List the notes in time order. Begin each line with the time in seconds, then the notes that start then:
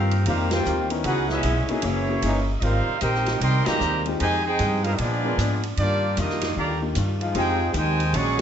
Already playing: G2 D#3 F3 G3 A#3 C4 D#4 F4 G4 A#4 F5
0.11 ride
0.25 F2 C3 D#3 G3 A#3 C4 D#4 F4 G4 C5 F5 A#5, ride
0.51 A#3 C4 F4 G4 A#4 C5 G5, snare, ride
0.65 D#2 D#3 G3 C4 F4, hi-hat pedal
0.90 B3 C#4 D#4 E4 A#4, ride
1.04 C#2 C#3 E3 G#3 B3 C#4 D#4 E4 F#4 G#4 B4 F#5, ride
1.28 G#3 B3 C#4 E4 G#4 B4 E5, snare
1.43 B1 C#3 G#3 B3 E4, hi-hat pedal, ride
1.68 A#3 B3 C#4 D#4 E4 F#4 G#4 D#5, muted upright bass stroke, ride
1.82 F#1 E3 F#3 A#3 C#4 E4 G#4 C#5, ride
1.86 G#4
2.09 A#3 C#4 E4 F#4 G#4
2.22 G1 E3 F#3 G#3 A#3 D#4 E4 G#4, hi-hat pedal, ride
2.59 G#1 G3 C4 D#4 F4 A#4 C5 D#5, ride
2.63 G#3 C4 G4 A#4 F5
2.99 A#1 G#3 C4 D#4 G4 A#4 C5 G5, hi-hat pedal, ride
3.15 snare
3.26 snare, ride
3.40 C2 D#3 G3 G#3 C4 G4 A#4 D#5 G5 C6, ride
3.65 D#3 G3 G#3 A#3 C4 D#4 G4 A#4 C5 D#5 A#5, muted upright bass stroke, snare, ride
3.80 D#2 G#3 C4 G4 A#4, hi-hat pedal
4.06 G#3 C4 D#4 F4 G4, ride
4.19 F2 C3 D#3 F3 G#3 D#4 G4 C5 G#5, ride
4.23 D#4 G4
4.44 C4 D#4 G#4 C5 G5
4.59 G2 F3 G#3 D#4 G4, hi-hat pedal, ride
4.83 G#3 B3 C4 D4 D#4 F4 G#4 A#4 C5 F5, ride
4.97 A#2 F3 G#3 B3 D4 F4 G#4 D5, ride
5.01 D4
5.24 G#3 B3 D4 F4 A#4
5.38 G#2 A#2 G#3 B3 D4, hi-hat pedal, ride
5.63 ride
5.77 G2 D#3 G3 A#3 D4 F4 G4 D5, ride
6.17 F2 D#3 G3 A#3 D4 D#4 F4 G4 D#5, hi-hat pedal, ride
6.30 snare
6.41 snare, ride
6.55 D#2 D3 D#3 G3 A#3 D4 F4 G4 D5 F5 A#5
6.82 A#3 D4 D#4 F4 G4
6.95 G2 D#3 G3 D4 F4, hi-hat pedal, ride
7.20 F3 G#3 D#4 F4, ride
7.35 F2 F3 G#3 C4 D#4 F4 G4 G#4 C5 G5, ride
7.74 D#2 C3 D#3 F3 G#3 D#4 G4 G5 G#5, hi-hat pedal, ride
7.78 C5
8.00 ride
8.13 A#1 A#2 F#3 G#3 C#4 D4 F#4 G#4 D5 F#5 C#6, ride